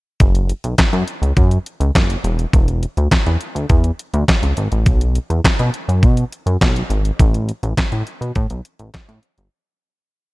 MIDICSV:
0, 0, Header, 1, 3, 480
1, 0, Start_track
1, 0, Tempo, 582524
1, 167, Time_signature, 4, 2, 24, 8
1, 8515, End_track
2, 0, Start_track
2, 0, Title_t, "Analog synth bass"
2, 0, Program_c, 0, 38
2, 167, Note_on_c, 0, 30, 93
2, 433, Note_off_c, 0, 30, 0
2, 529, Note_on_c, 0, 35, 86
2, 617, Note_off_c, 0, 35, 0
2, 644, Note_on_c, 0, 42, 49
2, 693, Note_off_c, 0, 42, 0
2, 765, Note_on_c, 0, 42, 97
2, 855, Note_off_c, 0, 42, 0
2, 1004, Note_on_c, 0, 37, 82
2, 1094, Note_off_c, 0, 37, 0
2, 1127, Note_on_c, 0, 42, 93
2, 1305, Note_off_c, 0, 42, 0
2, 1486, Note_on_c, 0, 37, 87
2, 1575, Note_off_c, 0, 37, 0
2, 1607, Note_on_c, 0, 30, 86
2, 1785, Note_off_c, 0, 30, 0
2, 1846, Note_on_c, 0, 28, 99
2, 2024, Note_off_c, 0, 28, 0
2, 2088, Note_on_c, 0, 28, 102
2, 2354, Note_off_c, 0, 28, 0
2, 2449, Note_on_c, 0, 38, 83
2, 2537, Note_off_c, 0, 38, 0
2, 2688, Note_on_c, 0, 40, 94
2, 2777, Note_off_c, 0, 40, 0
2, 2927, Note_on_c, 0, 38, 84
2, 3016, Note_off_c, 0, 38, 0
2, 3046, Note_on_c, 0, 40, 95
2, 3224, Note_off_c, 0, 40, 0
2, 3407, Note_on_c, 0, 38, 110
2, 3496, Note_off_c, 0, 38, 0
2, 3648, Note_on_c, 0, 37, 81
2, 3736, Note_off_c, 0, 37, 0
2, 3769, Note_on_c, 0, 32, 96
2, 3857, Note_off_c, 0, 32, 0
2, 3890, Note_on_c, 0, 33, 85
2, 4008, Note_on_c, 0, 35, 104
2, 4021, Note_off_c, 0, 33, 0
2, 4274, Note_off_c, 0, 35, 0
2, 4367, Note_on_c, 0, 40, 94
2, 4456, Note_off_c, 0, 40, 0
2, 4487, Note_on_c, 0, 47, 48
2, 4535, Note_off_c, 0, 47, 0
2, 4610, Note_on_c, 0, 47, 103
2, 4698, Note_off_c, 0, 47, 0
2, 4848, Note_on_c, 0, 42, 82
2, 4968, Note_on_c, 0, 47, 100
2, 4980, Note_off_c, 0, 42, 0
2, 5145, Note_off_c, 0, 47, 0
2, 5324, Note_on_c, 0, 42, 89
2, 5414, Note_off_c, 0, 42, 0
2, 5449, Note_on_c, 0, 35, 95
2, 5625, Note_off_c, 0, 35, 0
2, 5684, Note_on_c, 0, 32, 90
2, 5862, Note_off_c, 0, 32, 0
2, 5928, Note_on_c, 0, 33, 112
2, 6193, Note_off_c, 0, 33, 0
2, 6287, Note_on_c, 0, 33, 95
2, 6376, Note_off_c, 0, 33, 0
2, 6406, Note_on_c, 0, 45, 44
2, 6454, Note_off_c, 0, 45, 0
2, 6527, Note_on_c, 0, 45, 101
2, 6616, Note_off_c, 0, 45, 0
2, 6765, Note_on_c, 0, 47, 78
2, 6854, Note_off_c, 0, 47, 0
2, 6887, Note_on_c, 0, 45, 102
2, 6976, Note_off_c, 0, 45, 0
2, 7007, Note_on_c, 0, 35, 78
2, 7096, Note_off_c, 0, 35, 0
2, 7247, Note_on_c, 0, 33, 93
2, 7336, Note_off_c, 0, 33, 0
2, 7487, Note_on_c, 0, 45, 91
2, 7576, Note_off_c, 0, 45, 0
2, 7728, Note_on_c, 0, 31, 93
2, 7816, Note_off_c, 0, 31, 0
2, 8515, End_track
3, 0, Start_track
3, 0, Title_t, "Drums"
3, 165, Note_on_c, 9, 42, 75
3, 167, Note_on_c, 9, 36, 112
3, 247, Note_off_c, 9, 42, 0
3, 249, Note_off_c, 9, 36, 0
3, 288, Note_on_c, 9, 42, 49
3, 370, Note_off_c, 9, 42, 0
3, 407, Note_on_c, 9, 42, 55
3, 490, Note_off_c, 9, 42, 0
3, 528, Note_on_c, 9, 42, 53
3, 610, Note_off_c, 9, 42, 0
3, 644, Note_on_c, 9, 42, 80
3, 645, Note_on_c, 9, 36, 101
3, 650, Note_on_c, 9, 39, 84
3, 652, Note_on_c, 9, 38, 103
3, 726, Note_off_c, 9, 42, 0
3, 728, Note_off_c, 9, 36, 0
3, 732, Note_off_c, 9, 39, 0
3, 734, Note_off_c, 9, 38, 0
3, 767, Note_on_c, 9, 42, 36
3, 849, Note_off_c, 9, 42, 0
3, 886, Note_on_c, 9, 42, 63
3, 969, Note_off_c, 9, 42, 0
3, 1012, Note_on_c, 9, 42, 48
3, 1094, Note_off_c, 9, 42, 0
3, 1126, Note_on_c, 9, 42, 60
3, 1127, Note_on_c, 9, 36, 103
3, 1208, Note_off_c, 9, 42, 0
3, 1209, Note_off_c, 9, 36, 0
3, 1247, Note_on_c, 9, 42, 47
3, 1329, Note_off_c, 9, 42, 0
3, 1370, Note_on_c, 9, 42, 59
3, 1453, Note_off_c, 9, 42, 0
3, 1488, Note_on_c, 9, 42, 48
3, 1571, Note_off_c, 9, 42, 0
3, 1608, Note_on_c, 9, 36, 108
3, 1609, Note_on_c, 9, 42, 83
3, 1613, Note_on_c, 9, 39, 85
3, 1615, Note_on_c, 9, 38, 102
3, 1691, Note_off_c, 9, 36, 0
3, 1691, Note_off_c, 9, 42, 0
3, 1695, Note_off_c, 9, 39, 0
3, 1698, Note_off_c, 9, 38, 0
3, 1730, Note_on_c, 9, 42, 52
3, 1812, Note_off_c, 9, 42, 0
3, 1849, Note_on_c, 9, 42, 68
3, 1931, Note_off_c, 9, 42, 0
3, 1969, Note_on_c, 9, 42, 52
3, 2051, Note_off_c, 9, 42, 0
3, 2088, Note_on_c, 9, 36, 111
3, 2089, Note_on_c, 9, 42, 74
3, 2170, Note_off_c, 9, 36, 0
3, 2171, Note_off_c, 9, 42, 0
3, 2208, Note_on_c, 9, 42, 49
3, 2291, Note_off_c, 9, 42, 0
3, 2330, Note_on_c, 9, 42, 58
3, 2412, Note_off_c, 9, 42, 0
3, 2449, Note_on_c, 9, 42, 47
3, 2532, Note_off_c, 9, 42, 0
3, 2566, Note_on_c, 9, 36, 110
3, 2566, Note_on_c, 9, 42, 84
3, 2572, Note_on_c, 9, 39, 81
3, 2574, Note_on_c, 9, 38, 106
3, 2649, Note_off_c, 9, 36, 0
3, 2649, Note_off_c, 9, 42, 0
3, 2654, Note_off_c, 9, 39, 0
3, 2656, Note_off_c, 9, 38, 0
3, 2690, Note_on_c, 9, 42, 38
3, 2772, Note_off_c, 9, 42, 0
3, 2807, Note_on_c, 9, 42, 64
3, 2889, Note_off_c, 9, 42, 0
3, 2934, Note_on_c, 9, 42, 49
3, 3016, Note_off_c, 9, 42, 0
3, 3044, Note_on_c, 9, 42, 63
3, 3047, Note_on_c, 9, 36, 112
3, 3127, Note_off_c, 9, 42, 0
3, 3129, Note_off_c, 9, 36, 0
3, 3164, Note_on_c, 9, 42, 49
3, 3246, Note_off_c, 9, 42, 0
3, 3290, Note_on_c, 9, 42, 66
3, 3373, Note_off_c, 9, 42, 0
3, 3408, Note_on_c, 9, 42, 47
3, 3490, Note_off_c, 9, 42, 0
3, 3529, Note_on_c, 9, 36, 103
3, 3530, Note_on_c, 9, 42, 80
3, 3533, Note_on_c, 9, 39, 83
3, 3536, Note_on_c, 9, 38, 108
3, 3611, Note_off_c, 9, 36, 0
3, 3612, Note_off_c, 9, 42, 0
3, 3616, Note_off_c, 9, 39, 0
3, 3618, Note_off_c, 9, 38, 0
3, 3649, Note_on_c, 9, 42, 51
3, 3732, Note_off_c, 9, 42, 0
3, 3765, Note_on_c, 9, 42, 67
3, 3847, Note_off_c, 9, 42, 0
3, 3887, Note_on_c, 9, 42, 49
3, 3969, Note_off_c, 9, 42, 0
3, 4005, Note_on_c, 9, 42, 80
3, 4007, Note_on_c, 9, 36, 110
3, 4087, Note_off_c, 9, 42, 0
3, 4090, Note_off_c, 9, 36, 0
3, 4129, Note_on_c, 9, 42, 51
3, 4212, Note_off_c, 9, 42, 0
3, 4247, Note_on_c, 9, 42, 58
3, 4329, Note_off_c, 9, 42, 0
3, 4369, Note_on_c, 9, 42, 50
3, 4452, Note_off_c, 9, 42, 0
3, 4487, Note_on_c, 9, 36, 102
3, 4488, Note_on_c, 9, 42, 85
3, 4494, Note_on_c, 9, 39, 84
3, 4496, Note_on_c, 9, 38, 98
3, 4569, Note_off_c, 9, 36, 0
3, 4571, Note_off_c, 9, 42, 0
3, 4577, Note_off_c, 9, 39, 0
3, 4579, Note_off_c, 9, 38, 0
3, 4609, Note_on_c, 9, 42, 37
3, 4691, Note_off_c, 9, 42, 0
3, 4729, Note_on_c, 9, 42, 65
3, 4811, Note_off_c, 9, 42, 0
3, 4855, Note_on_c, 9, 42, 50
3, 4937, Note_off_c, 9, 42, 0
3, 4967, Note_on_c, 9, 36, 110
3, 4967, Note_on_c, 9, 42, 64
3, 5050, Note_off_c, 9, 36, 0
3, 5050, Note_off_c, 9, 42, 0
3, 5085, Note_on_c, 9, 42, 52
3, 5168, Note_off_c, 9, 42, 0
3, 5211, Note_on_c, 9, 42, 62
3, 5294, Note_off_c, 9, 42, 0
3, 5329, Note_on_c, 9, 42, 48
3, 5411, Note_off_c, 9, 42, 0
3, 5449, Note_on_c, 9, 36, 104
3, 5449, Note_on_c, 9, 42, 75
3, 5453, Note_on_c, 9, 39, 85
3, 5456, Note_on_c, 9, 38, 106
3, 5532, Note_off_c, 9, 36, 0
3, 5532, Note_off_c, 9, 42, 0
3, 5536, Note_off_c, 9, 39, 0
3, 5538, Note_off_c, 9, 38, 0
3, 5572, Note_on_c, 9, 42, 53
3, 5655, Note_off_c, 9, 42, 0
3, 5688, Note_on_c, 9, 42, 67
3, 5771, Note_off_c, 9, 42, 0
3, 5810, Note_on_c, 9, 42, 49
3, 5892, Note_off_c, 9, 42, 0
3, 5928, Note_on_c, 9, 36, 108
3, 5929, Note_on_c, 9, 42, 79
3, 6011, Note_off_c, 9, 36, 0
3, 6011, Note_off_c, 9, 42, 0
3, 6051, Note_on_c, 9, 42, 52
3, 6134, Note_off_c, 9, 42, 0
3, 6169, Note_on_c, 9, 42, 58
3, 6251, Note_off_c, 9, 42, 0
3, 6288, Note_on_c, 9, 42, 50
3, 6370, Note_off_c, 9, 42, 0
3, 6406, Note_on_c, 9, 36, 105
3, 6406, Note_on_c, 9, 42, 84
3, 6412, Note_on_c, 9, 39, 79
3, 6414, Note_on_c, 9, 38, 107
3, 6488, Note_off_c, 9, 36, 0
3, 6489, Note_off_c, 9, 42, 0
3, 6494, Note_off_c, 9, 39, 0
3, 6497, Note_off_c, 9, 38, 0
3, 6526, Note_on_c, 9, 42, 37
3, 6608, Note_off_c, 9, 42, 0
3, 6647, Note_on_c, 9, 42, 64
3, 6730, Note_off_c, 9, 42, 0
3, 6773, Note_on_c, 9, 42, 49
3, 6856, Note_off_c, 9, 42, 0
3, 6884, Note_on_c, 9, 42, 62
3, 6886, Note_on_c, 9, 36, 108
3, 6966, Note_off_c, 9, 42, 0
3, 6969, Note_off_c, 9, 36, 0
3, 7004, Note_on_c, 9, 42, 50
3, 7086, Note_off_c, 9, 42, 0
3, 7128, Note_on_c, 9, 42, 63
3, 7210, Note_off_c, 9, 42, 0
3, 7246, Note_on_c, 9, 42, 47
3, 7328, Note_off_c, 9, 42, 0
3, 7364, Note_on_c, 9, 42, 80
3, 7368, Note_on_c, 9, 36, 108
3, 7368, Note_on_c, 9, 39, 77
3, 7371, Note_on_c, 9, 38, 108
3, 7447, Note_off_c, 9, 42, 0
3, 7450, Note_off_c, 9, 36, 0
3, 7451, Note_off_c, 9, 39, 0
3, 7453, Note_off_c, 9, 38, 0
3, 7489, Note_on_c, 9, 42, 50
3, 7571, Note_off_c, 9, 42, 0
3, 7604, Note_on_c, 9, 42, 68
3, 7686, Note_off_c, 9, 42, 0
3, 7726, Note_on_c, 9, 42, 53
3, 7809, Note_off_c, 9, 42, 0
3, 8515, End_track
0, 0, End_of_file